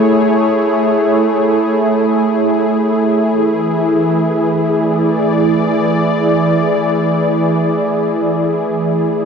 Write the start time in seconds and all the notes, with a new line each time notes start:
Already playing: A3 E4 G#4 C#5
3.30 E3
4.67 D5